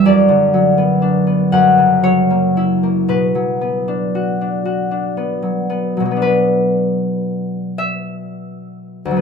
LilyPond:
<<
  \new Staff \with { instrumentName = "Harp" } { \time 6/8 \key b \minor \tempo 4. = 39 d''4. fis''8 cis''4 | b'2. | b'4. e''4. | }
  \new Staff \with { instrumentName = "Harp" } { \time 6/8 \key b \minor << { fis,16 d16 fis16 b16 d'16 b16 fis,16 cis16 fis16 ais16 e'16 ais16 | b,16 fis16 b16 d'16 fis'16 d'16 fis'16 d'16 b16 fis16 b16 fis16~ | fis2. | } \\ { r2. | r2. | <b, fis b d'>2. | } >> }
>>